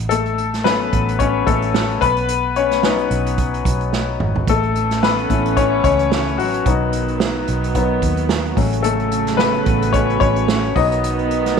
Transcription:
Already playing: fingered electric bass A1
0.09 upright piano A3 A4, closed hi-hat
0.26 closed hi-hat
0.38 closed hi-hat
0.54 snare, closed hi-hat
0.64 upright piano F#3 A3 B3 C#4 B4, snare
0.81 closed hi-hat
0.93 fingered electric bass A1, kick, closed hi-hat
1.09 closed hi-hat
1.19 upright piano C#4 C#5, kick, closed hi-hat
1.47 fingered electric bass A1, upright piano A3 A4, kick, closed hi-hat
1.62 closed hi-hat
1.74 snare
1.90 closed hi-hat
2.01 fingered electric bass B1, upright piano B3 B4, kick, closed hi-hat
2.17 closed hi-hat
2.28 closed hi-hat
2.56 upright piano C#4 C#5, closed hi-hat
2.71 snare, closed hi-hat
2.83 upright piano F#3 B3 D#4 B4, snare
2.99 closed hi-hat
3.10 fingered electric bass B1, closed hi-hat
3.26 closed hi-hat
3.38 kick, closed hi-hat
3.54 closed hi-hat
3.65 fingered electric bass B1, kick, closed hi-hat
3.81 closed hi-hat
3.93 snare
4.20 fingered electric bass G#1, mid tom
4.36 floor tom
4.47 fingered electric bass A1, string section E3 A3 C#4, upright piano A3 A4, kick, closed hi-hat
4.63 closed hi-hat
4.75 closed hi-hat
4.91 snare, closed hi-hat
5.03 upright piano B3 B4, snare
5.18 closed hi-hat
5.30 fingered electric bass A1, upright piano A3 C#4 E4, kick, closed hi-hat
5.45 closed hi-hat
5.57 upright piano C#4 C#5, kick, closed hi-hat
5.84 fingered electric bass C#2, upright piano C#4 C#5, kick, closed hi-hat
5.99 closed hi-hat
6.12 snare
6.27 closed hi-hat
6.38 fingered electric bass A1, upright piano F#3 F#4, open hi-hat
6.54 closed hi-hat
6.66 fingered electric bass B1, string section D#3 F#3 B3, upright piano F#3 B3 D#4, kick, closed hi-hat
6.93 closed hi-hat
7.08 closed hi-hat
7.20 snare
7.47 fingered electric bass B1, closed hi-hat
7.64 closed hi-hat
7.75 upright piano F#3 B3 D#4, kick, closed hi-hat
8.02 fingered electric bass D#2, kick, closed hi-hat
8.17 closed hi-hat
8.29 snare
8.45 closed hi-hat
8.57 fingered electric bass A1, string section C#3 A3, upright piano F#3 A3 C#4, kick, open hi-hat
8.73 closed hi-hat
8.83 upright piano A3 A4, closed hi-hat
9.00 closed hi-hat
9.12 closed hi-hat
9.27 snare, closed hi-hat
9.37 upright piano B3 B4, snare
9.54 closed hi-hat
9.66 fingered electric bass A1, kick, closed hi-hat
9.82 closed hi-hat
9.93 upright piano C#4 C#5, kick, closed hi-hat
10.10 closed hi-hat
10.20 fingered electric bass A1, upright piano C#4 C#5, kick, closed hi-hat
10.36 closed hi-hat
10.48 snare
10.64 closed hi-hat
10.76 fingered electric bass B1, string section D#3 B3, upright piano F#3 B3 D#4 D#5, kick, open hi-hat
10.92 closed hi-hat
11.04 closed hi-hat
11.19 closed hi-hat
11.31 closed hi-hat
11.46 snare, closed hi-hat

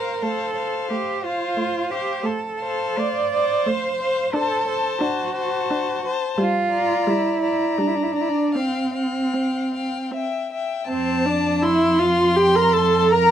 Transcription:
Already playing: viola F3, cello A#4, violin C5 F5
0.21 viola A3, cello A4, violin C5 F5
0.55 violin C5 F5
0.90 viola A3, cello G4
1.24 cello F4, violin C5 F5
1.57 viola A3
1.90 cello G4, violin C5 F5
2.24 viola A3, cello A4
2.60 violin C5 F5
2.97 viola A3, cello D5
3.33 violin C5 F5
3.67 viola A3, cello C5
4.00 violin C5 F5
4.34 viola D4, cello A4, violin C5 A5
4.67 violin C5 A5
5.01 viola D4, cello F#4
5.36 violin C5 A5
5.70 viola D4
6.05 violin C5 A5
6.38 viola G3, cello F4
6.72 violin D5 A#5
7.07 viola G3, cello E4
7.42 violin D5 A#5
7.78 viola G3, cello D4
7.87 cello E4
7.95 cello D4
8.03 cello E4
8.12 cello D4, violin D5 A#5
8.21 cello E4
8.29 cello D4
8.54 viola C4, cello C4, violin F5 G5
8.94 violin F5 G5
9.34 viola C4
9.74 violin F5 G5
10.11 viola C4, violin E5
10.16 violin G5
10.51 violin E5 G5
10.88 cello F2, viola C4, violin C5 A5
11.26 viola D4, violin D5
11.62 viola E4, violin E5 C6
11.99 viola F4, violin F5
12.36 viola G4, violin G5
12.55 viola A#4, violin A#5
12.74 viola A4, violin A5
13.11 viola A#4, violin A#5

